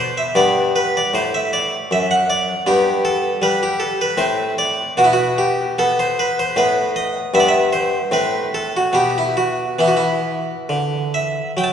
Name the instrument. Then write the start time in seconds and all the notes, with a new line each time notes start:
harpsichord
Already playing: B2 C4 C5
0.18 E5
0.35 G2 B3 D5
0.76 B4
0.97 D5
1.14 A2 C5
1.34 E5
1.53 D5
1.91 F#2 E5
2.11 F#5
2.30 D5
2.67 G2 B3 G4
3.05 A4
3.42 G3 B4
3.63 G4
3.80 A4
4.01 B4
4.17 A2 C4 C5
4.58 D5
4.97 B2 B3 F#4
5.04 E4
5.13 F#4
5.38 G4
5.79 B3 A4
5.99 C5
6.19 B4
6.39 C5
6.56 A2 B3 B4
6.96 D#5
7.34 G2 B3 E5
7.40 D5
7.48 E5
7.73 C5
8.11 A2 C4 B4
8.54 A4
8.77 F#4
8.93 B2 B3 G4
9.18 E4
9.37 F#4
9.79 E3 B3 E4
9.88 F#4
9.97 E4
10.69 D3
11.14 E5
11.57 F#3 G5
11.64 A5